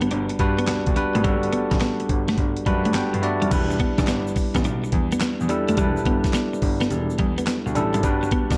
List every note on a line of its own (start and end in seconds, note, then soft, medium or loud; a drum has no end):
0.00 0.39 G3 medium
0.00 0.07 B3 medium
0.00 0.40 D4 medium
0.00 0.40 F#4 medium
0.00 0.40 B4 medium
0.00 closed hi-hat soft
0.11 0.26 G1 medium
0.11 0.22 D4 medium
0.11 closed hi-hat medium
0.29 muted clean electric guitar stroke soft
0.29 closed hi-hat medium
0.39 0.54 G2 medium
0.39 0.80 G3 medium
0.39 0.80 D4 medium
0.39 0.80 F#4 medium
0.39 0.81 B4 medium
0.39 kick medium
0.39 closed hi-hat medium
0.58 0.64 B3 medium
0.58 closed hi-hat medium
0.67 0.76 D2 soft
0.67 0.79 B3 medium
0.67 snare loud
0.67 clap medium
0.67 closed hi-hat medium
0.86 0.94 D2 medium
0.86 kick loud
0.86 closed hi-hat medium
0.96 1.18 G3 medium
0.96 1.18 D4 medium
0.96 1.18 F#4 medium
0.96 1.19 B4 medium
0.96 muted clean electric guitar stroke soft
0.96 closed hi-hat medium
1.15 1.22 G#1 medium
1.15 1.21 A3 medium
1.15 closed hi-hat medium
1.24 1.46 G1 medium
1.24 2.02 G3 medium
1.24 1.35 G3 loud
1.24 2.03 D4 medium
1.24 2.03 F#4 medium
1.24 2.03 A4 loud
1.24 kick loud
1.24 closed hi-hat medium
1.43 closed hi-hat medium
1.53 1.64 B3 medium
1.53 closed hi-hat medium
1.71 1.79 A1 medium
1.71 muted clean electric guitar stroke soft
1.71 kick medium
1.71 snare medium
1.71 closed hi-hat medium
1.81 1.92 B3 medium
1.81 snare loud
1.81 clap medium
1.81 closed hi-hat medium
2.00 muted clean electric guitar stroke soft
2.00 closed hi-hat soft
2.09 2.31 G1 medium
2.09 kick medium
2.09 closed hi-hat medium
2.28 2.34 A3 medium
2.28 snare medium
2.28 closed hi-hat soft
2.38 2.52 G1 medium
2.38 muted clean electric guitar stroke soft
2.38 kick medium
2.38 closed hi-hat medium
2.57 closed hi-hat medium
2.66 2.80 F#2 medium
2.66 3.07 G3 medium
2.66 2.78 G3 medium
2.66 3.07 D4 medium
2.66 3.07 F#4 medium
2.66 3.07 B4 medium
2.66 2.93 B5 medium
2.66 kick medium
2.66 closed hi-hat medium
2.85 2.93 G1 medium
2.85 2.91 A3 medium
2.85 closed hi-hat medium
2.94 3.05 B3 medium
2.94 3.21 G5 medium
2.94 snare loud
2.94 clap medium
2.94 closed hi-hat medium
3.13 3.21 G2 medium
3.13 muted clean electric guitar stroke soft
3.13 closed hi-hat medium
3.22 3.44 G3 medium
3.22 3.45 D4 medium
3.22 3.45 F#4 medium
3.22 3.45 D5 medium
3.22 3.49 E5 medium
3.22 closed hi-hat medium
3.42 3.49 F1 medium
3.42 3.47 G3 medium
3.42 closed hi-hat medium
3.51 3.73 E1 loud
3.51 4.29 G3 medium
3.51 4.29 D4 medium
3.51 4.29 E4 medium
3.51 4.30 B4 medium
3.51 kick loud
3.51 closed hi-hat medium
3.51 crash medium
3.51 shaker medium
3.71 muted clean electric guitar stroke soft
3.71 shaker soft
3.80 3.91 B3 medium
3.80 kick medium
3.80 closed hi-hat medium
3.98 4.05 A1 medium
3.98 4.04 D4 medium
3.98 kick loud
3.98 snare medium
3.98 closed hi-hat medium
3.98 shaker medium
4.07 4.29 G1 medium
4.07 4.19 B3 medium
4.07 snare loud
4.07 clap medium
4.07 closed hi-hat medium
4.07 shaker medium
4.27 shaker soft
4.36 muted clean electric guitar stroke soft
4.36 kick medium
4.36 open hi-hat medium
4.36 shaker medium
4.55 4.62 A1 medium
4.55 4.61 B3 medium
4.55 kick medium
4.55 snare medium
4.55 closed hi-hat medium
4.55 shaker soft
4.64 4.79 B1 medium
4.64 4.76 D4 medium
4.64 closed hi-hat medium
4.64 shaker medium
4.84 muted clean electric guitar stroke soft
4.84 shaker soft
4.92 5.07 E2 loud
4.92 kick loud
4.92 closed hi-hat medium
5.12 5.18 B3 medium
5.12 closed hi-hat medium
5.12 shaker medium
5.21 5.33 B3 medium
5.21 snare loud
5.21 clap loud
5.21 closed hi-hat medium
5.21 shaker medium
5.41 5.47 E2 medium
5.41 shaker soft
5.49 5.71 G3 medium
5.49 5.71 D4 medium
5.49 5.72 E4 medium
5.49 5.72 A4 medium
5.49 muted clean electric guitar stroke soft
5.49 closed hi-hat medium
5.49 shaker soft
5.68 5.76 F1 medium
5.68 5.74 A3 medium
5.68 closed hi-hat medium
5.68 shaker soft
5.77 5.92 E1 loud
5.77 6.56 G3 medium
5.77 5.89 G3 loud
5.77 6.56 D4 medium
5.77 6.56 E4 medium
5.77 6.56 B4 medium
5.77 kick loud
5.77 closed hi-hat medium
5.77 shaker medium
5.97 shaker medium
6.05 6.20 G1 medium
6.05 6.17 B3 medium
6.05 kick medium
6.05 closed hi-hat medium
6.24 muted clean electric guitar stroke soft
6.24 kick medium
6.24 snare medium
6.24 closed hi-hat medium
6.24 shaker medium
6.33 6.46 B3 medium
6.33 snare loud
6.33 clap medium
6.33 closed hi-hat medium
6.33 shaker medium
6.53 muted clean electric guitar stroke soft
6.53 shaker soft
6.62 6.84 G1 medium
6.62 kick medium
6.62 open hi-hat medium
6.62 shaker soft
6.81 6.87 B3 medium
6.81 snare medium
6.81 closed hi-hat soft
6.81 shaker soft
6.91 7.05 E1 medium
6.91 muted clean electric guitar stroke soft
6.91 closed hi-hat medium
6.91 shaker medium
7.10 shaker soft
7.18 7.33 E2 loud
7.18 7.30 G3 medium
7.18 kick medium
7.18 closed hi-hat medium
7.38 7.44 B3 medium
7.38 closed hi-hat medium
7.38 shaker medium
7.47 7.58 B3 medium
7.47 snare loud
7.47 clap loud
7.47 closed hi-hat medium
7.47 shaker medium
7.66 7.73 D2 medium
7.66 muted clean electric guitar stroke soft
7.66 shaker soft
7.75 7.90 A1 medium
7.75 7.97 G3 medium
7.75 7.97 D4 medium
7.75 7.98 E4 medium
7.75 7.98 A4 medium
7.75 closed hi-hat medium
7.75 shaker medium
7.94 8.01 G#1 medium
7.94 8.00 G3 medium
7.94 closed hi-hat medium
7.94 shaker soft
8.03 8.25 G1 loud
8.03 8.58 G3 medium
8.03 8.58 D4 medium
8.03 8.58 F#4 medium
8.03 8.58 B4 medium
8.03 kick loud
8.03 closed hi-hat medium
8.03 shaker medium
8.23 muted clean electric guitar stroke soft
8.23 shaker medium
8.31 8.43 B3 medium
8.31 kick loud
8.31 closed hi-hat medium
8.50 8.58 B1 medium
8.50 8.57 D4 medium
8.50 kick medium
8.50 snare medium
8.50 closed hi-hat medium
8.50 shaker medium